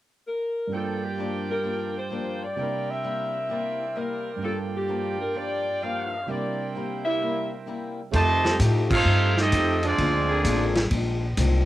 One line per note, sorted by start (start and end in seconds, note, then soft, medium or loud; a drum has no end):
0.28 0.70 A#4 medium
0.67 2.55 G2 soft
0.67 1.47 G3 soft
0.71 1.04 G2 soft
0.71 1.05 F3 soft
0.71 2.57 A#3 soft
0.71 1.06 A#3 soft
0.71 1.06 D4 soft
0.71 2.57 F4 medium
0.71 2.59 F4 soft
0.71 1.04 A4 medium
0.71 2.58 D5 medium
0.71 2.56 G5 medium
0.77 2.59 A#4 soft
1.03 1.50 G4 medium
1.18 1.51 G2 medium
1.18 1.51 F3 soft
1.18 1.51 A#3 soft
1.18 1.52 D4 medium
1.49 2.55 G3 soft
1.49 2.57 D4 soft
1.49 2.59 G4 soft
1.49 1.93 A#4 medium
1.63 1.96 G2 soft
1.63 1.97 F3 soft
1.63 1.97 A#3 soft
1.63 1.98 D4 soft
1.97 2.43 C5 medium
2.10 2.43 G2 soft
2.10 2.44 F3 medium
2.10 2.44 A#3 medium
2.10 2.44 D4 medium
2.44 2.89 D5 medium
2.56 2.89 C3 soft
2.56 4.42 C3 soft
2.56 4.38 G3 soft
2.56 2.90 G3 soft
2.56 2.90 A#3 soft
2.56 4.43 D4 soft
2.56 4.43 E4 medium
2.56 2.91 E4 soft
2.56 4.44 E4 soft
2.56 4.43 A#4 medium
2.56 3.49 C5 medium
2.56 3.49 G5 medium
2.61 4.44 A#4 soft
2.90 3.97 E5 medium
3.03 3.36 C3 soft
3.03 3.36 G3 medium
3.03 3.37 A#3 medium
3.03 3.37 E4 medium
3.49 3.82 C3 soft
3.49 3.82 G3 soft
3.49 3.83 A#3 soft
3.49 3.83 E4 medium
3.49 4.42 C5 medium
3.49 4.41 D5 medium
3.49 4.41 G5 medium
3.96 4.28 C3 soft
3.96 4.29 G3 medium
3.96 4.29 A#3 soft
3.96 4.29 E4 medium
3.96 4.44 A#4 medium
4.36 6.25 G2 soft
4.36 5.17 G3 soft
4.42 4.75 G2 soft
4.42 4.75 F3 soft
4.42 6.28 A#3 soft
4.42 4.76 A#3 soft
4.42 4.76 D4 soft
4.42 6.28 F4 medium
4.42 6.29 F4 soft
4.42 4.58 A4 medium
4.42 6.28 D5 medium
4.42 6.27 G5 medium
4.48 6.30 A4 soft
4.76 5.18 G4 medium
4.88 5.21 G2 medium
4.88 5.21 F3 medium
4.88 5.22 A#3 medium
4.88 5.22 D4 medium
5.18 6.26 G3 soft
5.18 6.26 D4 soft
5.18 6.29 G4 soft
5.18 5.35 A#4 medium
5.34 5.67 G2 soft
5.34 5.68 F3 soft
5.34 5.68 A#3 soft
5.34 5.69 D4 soft
5.34 5.82 D5 medium
5.82 6.14 G2 medium
5.82 6.15 F3 medium
5.82 6.15 A#3 medium
5.82 6.15 D4 medium
5.82 6.29 F5 medium
6.26 8.12 C3 soft
6.26 6.60 C3 soft
6.26 8.13 G3 soft
6.26 6.61 G3 soft
6.26 6.61 A#3 soft
6.26 8.13 D4 soft
6.26 8.13 E4 medium
6.26 8.13 E4 soft
6.26 7.03 A#4 medium
6.26 8.13 A#4 soft
6.26 8.13 C5 medium
6.26 6.72 D5 medium
6.26 8.13 G5 medium
6.31 6.62 E4 soft
6.75 7.07 C3 medium
6.75 7.08 G3 medium
6.75 7.08 A#3 medium
6.75 7.08 E4 medium
7.04 7.48 G3 medium
7.04 7.48 A#3 medium
7.04 7.48 E4 medium
7.04 7.48 E5 medium
7.20 7.53 C3 soft
7.20 7.53 G3 soft
7.20 7.54 A#3 soft
7.20 7.54 E4 soft
7.20 8.13 A#4 medium
7.20 8.13 E5 medium
7.66 7.99 C3 soft
7.66 7.99 G3 medium
7.66 8.00 A#3 medium
7.66 8.00 E4 medium
8.11 8.58 F2 medium
8.11 8.55 C3 loud
8.11 8.55 D#3 loud
8.11 8.45 F3 soft
8.11 8.55 A3 medium
8.11 8.46 A3 soft
8.11 8.46 D#4 medium
8.11 8.57 G4 loud
8.11 8.57 C5 loud
8.11 8.57 D#5 loud
8.11 8.57 A5 loud
8.11 kick soft
8.11 ride medium
8.16 8.47 G4 medium
8.43 9.02 F3 loud
8.43 9.02 A3 loud
8.43 9.02 D#4 medium
8.43 9.02 G4 loud
8.43 snare medium
8.59 9.04 A2 loud
8.59 8.92 F3 medium
8.59 8.92 A3 medium
8.59 8.93 D#4 medium
8.59 8.93 G4 medium
8.59 kick soft
8.59 hi-hat pedal medium
8.59 ride medium
8.90 9.33 A3 medium
8.90 9.33 C4 medium
8.90 9.34 D#4 medium
8.90 9.33 F4 loud
8.90 9.34 A4 medium
8.90 9.34 C5 loud
8.90 9.34 F5 loud
8.90 kick loud
8.90 crash loud
9.05 9.50 G2 loud
9.05 9.38 F3 soft
9.05 9.39 A3 medium
9.05 9.39 D#4 medium
9.10 9.40 G4 medium
9.36 9.80 A3 medium
9.36 9.80 C4 medium
9.36 9.81 C4 medium
9.36 9.79 D#4 medium
9.36 9.80 G4 medium
9.36 9.80 A4 medium
9.36 9.80 D#5 loud
9.36 snare soft
9.52 9.97 F2 loud
9.52 9.85 F3 medium
9.52 9.85 A3 medium
9.52 9.85 D#4 medium
9.52 9.86 G4 medium
9.52 kick soft
9.52 hi-hat pedal medium
9.52 ride medium
9.83 10.72 F3 medium
9.83 10.72 G#3 medium
9.83 10.73 C4 medium
9.83 10.72 D4 medium
9.83 10.72 F4 medium
9.83 10.73 G#4 medium
9.83 10.73 D5 loud
9.83 ride medium
9.98 10.43 D2 medium
9.98 10.31 A#2 medium
9.98 10.31 G#3 medium
9.98 10.32 C4 medium
9.98 10.32 D4 medium
9.98 kick soft
9.98 ride medium
10.28 10.88 D3 loud
10.28 10.88 A#3 loud
10.28 10.87 C4 medium
10.28 10.88 G#4 loud
10.44 10.89 A1 loud
10.44 10.77 A#2 medium
10.44 10.78 G#3 medium
10.44 10.78 C4 medium
10.44 10.78 D4 loud
10.44 kick soft
10.44 hi-hat pedal medium
10.44 ride medium
10.75 snare medium
10.75 ride medium
10.91 11.36 A#1 medium
10.91 11.23 A#2 medium
10.91 11.24 G#3 medium
10.91 11.25 C4 medium
10.91 11.25 D4 medium
10.91 kick soft
10.91 ride medium
11.37 11.65 C2 loud
11.37 11.65 A#2 medium
11.37 11.65 G#3 medium
11.37 11.65 C4 medium
11.37 11.65 D4 medium
11.37 kick soft
11.37 hi-hat pedal medium
11.37 ride medium